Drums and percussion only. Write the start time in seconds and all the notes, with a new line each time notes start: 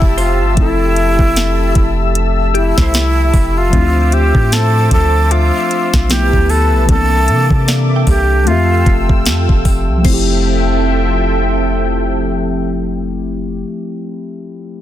0.02 kick
0.18 open hi-hat
0.57 kick, closed hi-hat
0.96 closed hi-hat
1.19 kick
1.36 snare, closed hi-hat
1.75 kick, closed hi-hat
2.15 closed hi-hat
2.55 closed hi-hat
2.78 kick, snare
2.94 snare, closed hi-hat
3.34 kick, open hi-hat
3.73 kick, closed hi-hat
4.12 closed hi-hat
4.35 kick
4.52 snare, closed hi-hat
4.91 kick, closed hi-hat
5.31 closed hi-hat
5.71 closed hi-hat
5.94 kick, snare
6.10 snare, closed hi-hat
6.33 kick
6.49 open hi-hat
6.89 kick, closed hi-hat
7.28 closed hi-hat
7.50 kick
7.68 snare, closed hi-hat
8.07 kick, open hi-hat
8.47 closed hi-hat
8.86 kick, closed hi-hat
9.09 kick
9.26 snare, closed hi-hat
9.49 kick
9.65 kick, open hi-hat
10.05 kick, crash